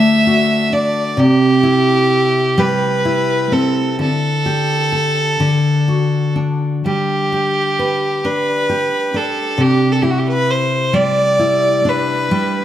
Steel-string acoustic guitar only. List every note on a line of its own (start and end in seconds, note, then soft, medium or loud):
0.00 1.16 D3 medium
0.00 1.26 A3 medium
0.00 0.72 D4 soft
0.00 0.25 F#4 medium
0.00 1.26 D5 medium
0.27 1.26 F#4 medium
0.72 1.26 D4 medium
1.17 3.98 C3 medium
1.63 3.04 E4 medium
2.58 4.08 G3 medium
3.05 4.08 E4 medium
3.52 4.07 C4 medium
3.99 5.40 D3 medium
4.46 5.50 G4 medium
4.92 5.50 A4 medium
5.40 8.90 D3 medium
5.88 6.94 F#4 soft
6.36 8.24 D4 soft
6.86 10.36 G3 medium
7.32 8.69 G4 soft
7.79 9.68 B4 soft
8.25 9.14 D4 medium
8.69 10.02 G4 soft
9.14 10.06 D4 soft
9.58 12.32 C3 medium
10.03 11.38 E4 soft
10.93 12.31 G3 medium
11.39 12.42 E4 medium
11.85 12.65 D4 medium
12.31 12.65 G3 medium